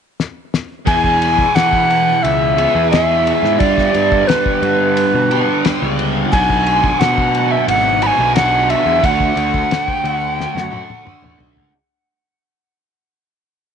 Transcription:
0.20 snare
0.54 snare
0.85 E2 B2 E3 B3 E4 G#4 G#5, kick, ride
1.04 kick
1.22 ride
1.38 kick
1.55 E3 F#5, snare, ride
1.73 kick
1.90 ride
2.23 C#2 E5, ride
2.57 E2 B2 E3 B3 E4 G#4, ride
2.75 E2
2.91 E2 B2 E3 B3 E4 G#4 E5, snare, ride
3.27 ride
3.43 G#2, snare
3.59 G2 D3 G3 B3 D4 G4 D5, kick, ride
3.78 kick, snare
3.94 G2, ride
4.12 kick
4.27 B4, snare, ride
4.46 kick
4.62 G2, ride
4.97 ride
5.14 B2
5.31 G2 D3 G3 B3 D4 G4, ride
5.64 G2 D3 G3 B3 D4 G4, snare, ride
5.82 C#2
5.99 ride
6.32 B1 B2 F#3 B3 D4 F#4 G#5, kick, ride
6.50 kick
6.67 ride
6.84 kick
7.00 B2 F#5, snare, ride
7.18 kick
7.35 ride
7.51 E5
7.68 G#1 F#5, ride
8.01 B2 F#3 B3 D4 F#4 B5, ride
8.07 G#5
8.19 B1
8.35 B2 F#3 B3 D4 F#4 F#5, snare, ride
8.70 E5, ride
8.86 E2
9.03 D2 D3 A3 D4 F#4 F#5, kick, ride
9.20 kick
9.36 D2, ride
9.54 kick
9.71 snare, ride
9.88 G5, kick
10.04 D2, ride
10.11 F#5
10.35 G5
10.40 snare
10.55 F#2 F#5, snare
10.70 D3 A3 D4 F#4, high tom
10.90 high tom
11.05 D3 A3 D4 F#4, mid tom
11.22 A1, mid tom
11.39 B1, floor tom
11.56 C#2, floor tom

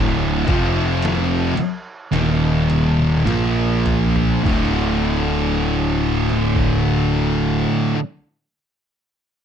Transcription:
Already playing: D1 D2 A2 D3
0.47 F1 F2 C3 F3, kick, ride
1.02 snare, ride
1.57 muted distorted electric guitar stroke, muted fingered electric bass stroke, ride
2.12 D#1 D#2 A#2 D#3, snare, ride
2.70 high tom, ride
2.99 high tom
3.25 A#1 A#2 F3 A#3, mid tom, ride
3.86 floor tom, ride
4.16 floor tom
4.43 D1 D2 A2, kick, crash
4.47 D3
6.30 snare
6.56 kick

